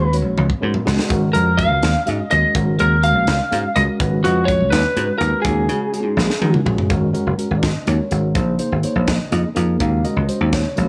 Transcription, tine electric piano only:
0.12 G#3 C#4 F#4 C#5
0.61 G#3 C#4 F#4 A#4
0.85 G#3 C#4 F#4 G#4
1.09 G#3 C#4 F#4 A#4
1.34 G#3 C#4 F#4 A#4
1.57 G#3 C#4 F#4 A#4
2.06 G#3 C#4 F#4 G#4
2.30 G#3 C#4 F#4 A#4
2.54 G#3 C#4 F#4 A#4
2.78 G#3 C#4 F#4 G#4
3.03 G#3 C#4 F#4 A#4
3.51 G#3 C#4 F#4 G#4
3.75 G#3 C#4 F#4 A#4
4.00 G#3 C#4 F#4 B4
4.24 G#3 C#4 F#4 B4
4.48 G#3 C#4 F#4 C#5
4.96 G#3 C#4 F#4 B4
5.20 G#3 C#4 F#4 B4
5.45 G#3 C#4 F#4 A#4
5.69 G#3 C#4 F#4 G#4
5.93 G#3 C#4 F#4 G#4
6.42 G#3 C#4 F#4 A#4
6.65 G#3 C#4 F#4 G#4
6.89 G#3 C#4 F#4 A#4
7.13 G#3 C#4 F#4 A#4
7.38 G#3 C#4 F#4 A#4
7.58 D5
7.63 D#5
7.86 G#3 C#4 F#4 A#4 C#5
8.11 G#3 C#4 F#4 A#4
8.34 A#3 D#4 G#4 C5
8.58 A#3 D#4 G#4 C5
8.83 A#3 D#4 G#4 C5 C#5
9.08 D#5
9.31 A#3 D#4 G#4 D#5
9.55 A#3 D#4 G#4 A#4
9.79 G#3 C#4 F#4 A#4 F5
10.04 G#3 C#4 F#4 A#4 D#5
10.27 G#3 C#4 F#4 C5
10.54 C#5
10.76 G#3 C#4 F#4 A#4

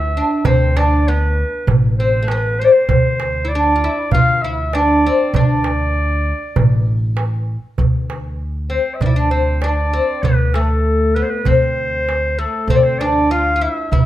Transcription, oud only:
Already playing: E4
0.17 D4
0.45 C4
0.77 D4
1.08 B3
2.00 C4
2.23 A3
2.31 B3
2.62 C4
3.45 E4
3.55 D4
3.76 F4
3.84 E4
4.15 F4
4.44 E4
4.75 D4
5.06 C4
5.36 D4
8.70 C4
9.02 D4 E4
9.16 D4
9.31 C4
9.64 D4
9.93 C4
10.25 B3
10.55 A3
11.16 B3
11.46 C4
12.39 A3
12.70 C4
13.01 D4
13.31 F4
13.56 F4
13.61 E4
13.93 E4

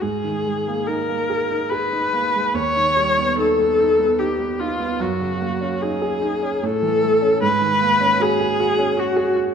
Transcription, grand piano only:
0.02 G#2
0.24 D#3
0.45 G#3
0.68 A#3
0.88 D#4
1.09 A#3
1.30 G#4
1.51 D#4
1.72 G#4
1.92 D#4
2.13 A#3
2.34 G#3
2.54 D#2
2.76 D#3
2.96 G3
3.18 B3
3.38 D#4
3.59 B3
3.80 D#4
3.99 B3
4.20 D#4
4.39 B3
4.60 D#4
4.80 B3
5.00 F#2
5.21 C#3
5.41 A#3
5.61 C#4
5.82 D#4
6.02 G#4
6.22 D#4
6.43 C#4
6.62 A2
6.82 E3
7.03 A3
7.22 C#4
7.42 G#2
7.61 D#3
7.81 A#3
8.01 C#4
8.20 F#4
8.40 G#4
8.60 F#4
8.78 C#4
8.97 F#4
9.16 G#4
9.36 F#4

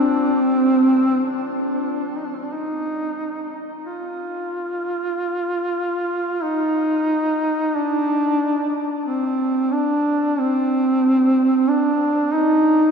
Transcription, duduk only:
Already playing: C4
1.26 D4
2.17 D#4
2.26 D4
2.35 C4
2.44 D4
2.53 D#4
3.84 F4
6.43 D#4
7.75 D4
9.06 C4
9.72 D4
10.39 C4
11.68 D4
12.34 D#4

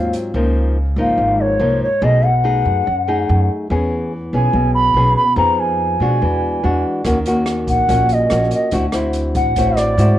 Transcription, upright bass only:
Already playing: D#2
0.34 C#2
0.96 G#1
1.18 G#1
1.59 C2
2.02 B1
2.65 F#2
2.87 F#2
3.29 F#2
3.70 E2
4.33 B1
4.53 B1
4.94 B1
5.36 F2
6.00 B2
6.22 E2
6.64 E2
7.05 D#2
7.67 A#1
7.89 A#1
8.31 A#1
8.72 D2
9.35 A1
9.56 A1
9.98 G#2

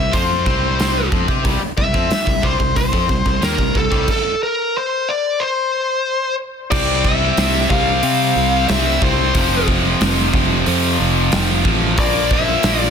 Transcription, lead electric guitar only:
Already playing: E5
0.13 C5
1.78 E5
2.44 C5
2.77 C5
3.44 A#4
3.77 A4
4.11 A4
4.43 A#4
4.78 C5
5.09 D5
5.40 C5
6.71 D5
7.04 E5
7.70 F5
8.68 E5
9.02 C5
12.00 D5
12.33 E5
12.79 D5

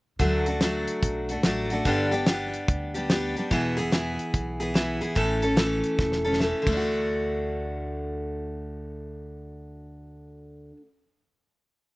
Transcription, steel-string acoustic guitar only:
0.19 D3 F#3 A3 D4 F#4
0.46 A3 D4 F#4
0.61 F#3 A3 D4 F#4
1.30 A3 D4 F#4
1.44 F#3 A3 D4 F#4
1.71 A3 D4 F#4
1.85 G2 D3 G3 B3 D4 G4
2.11 G3 B3 D4 G4
2.26 G3 B3 D4 G4
2.94 G3 B3 D4 G4
3.10 G3 B3 D4 G4
3.36 G3 B3 D4 G4
3.51 E2 B2 E3 B3 E4 G#4
3.77 E3 B3 E4 G#4
3.91 E3 B3 E4 G#4
4.60 E3 B3 E4 G#4
4.74 E3 B3 E4 G#4
5.01 E3 B3 E4 G#4
5.15 A2 E3 A3 C#4 A4
5.42 A3 C#4 A4
5.56 E3 A3 C#4 A4
6.24 A3 C#4 A4
6.39 E3 A3 C#4 A4
6.62 D3
6.68 A3
6.73 D4
6.77 F#4

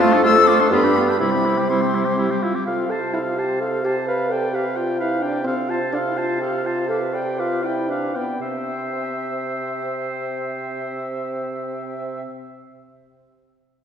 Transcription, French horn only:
Already playing: F4
0.25 A4
0.71 G4
1.20 E4
1.69 C4
2.17 G4
2.42 F4
2.66 F4
2.89 A4
3.13 E4
3.26 F4
3.37 G4
3.60 A4
3.85 G4
4.07 B4
4.30 A4
4.53 G4
4.76 F4
5.00 E4
5.21 D4
5.44 C4
5.69 F4
5.93 D4
6.06 E4
6.18 F4
6.41 G4
6.65 F4
6.89 A4
7.13 G4
7.38 F4
7.63 E4
7.89 D4
8.16 B3
8.41 C4

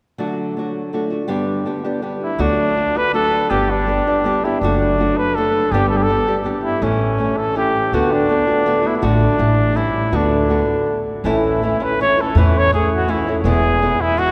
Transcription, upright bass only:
2.39 D2
3.51 G1
4.61 F#1
5.72 G1
6.82 A1
7.92 D2
9.03 A1
9.39 A1
10.12 D2
11.24 A1
12.35 E2
13.44 E1

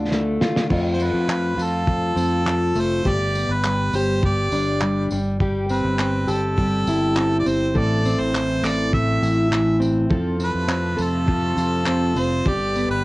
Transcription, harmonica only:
0.93 C5
1.03 B4
1.63 A4
2.80 C5
3.09 D5
3.52 B4
3.96 C5
4.26 D5
5.71 B4
6.30 A4
7.39 D5
7.48 C5
7.78 D5
8.19 C5
8.65 D5
8.94 E5
10.44 B4
11.02 A4
12.18 C5
12.48 D5
12.91 B4

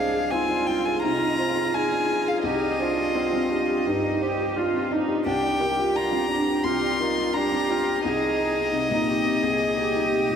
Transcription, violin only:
Already playing: F5
0.31 G#5
0.67 G5
0.85 G#5
1.03 A#5
1.74 G#5
2.28 F5
2.44 D#5
5.26 G5
5.96 A#5
6.64 C6
7.34 A#5
8.04 D#5

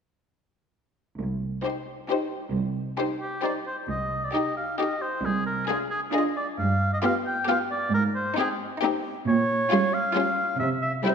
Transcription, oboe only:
3.20 G4
3.43 D5
3.67 C5
3.90 D#5
4.24 D5
4.34 D#5
4.57 F5
4.78 D#5
5.02 C5
5.26 G#4
5.47 A#4
5.68 G#4
5.91 G#4
6.14 D#5
6.37 D5
6.59 F5
6.94 D#5
7.05 F5
7.26 G5
7.49 F5
7.71 D5
7.94 A#4
8.15 C5
8.39 G#4
9.28 C#5
9.94 F5
10.60 E5
10.82 E5
11.06 G5

